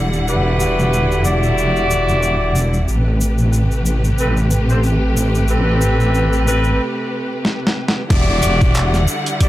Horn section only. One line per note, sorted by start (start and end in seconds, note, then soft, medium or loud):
0.27 1.22 E4 medium
0.27 1.22 F#4 medium
0.27 1.22 G4 medium
0.27 1.22 B4 medium
1.25 2.87 E4 loud
1.25 2.87 F#4 medium
1.25 2.86 G4 medium
1.25 2.86 D5 loud
4.19 4.35 C4 medium
4.19 4.35 G4 medium
4.19 4.35 A4 medium
4.19 4.35 B4 medium
4.70 4.78 C4 medium
4.70 4.78 G4 medium
4.70 4.78 A4 medium
4.70 4.78 C5 medium
5.49 6.44 C4 medium
5.49 6.44 G4 medium
5.49 6.44 A4 medium
5.49 6.44 B4 medium
6.47 6.80 C4 medium
6.47 6.80 G4 medium
6.47 6.80 A4 medium
6.47 6.80 B4 loud
8.10 9.08 E4 loud
8.10 9.08 F#4 loud
8.10 9.08 G4 medium
8.10 9.08 D5 loud
9.40 9.49 E4 medium
9.40 9.49 F#4 medium
9.40 9.49 G4 medium
9.40 9.49 D5 medium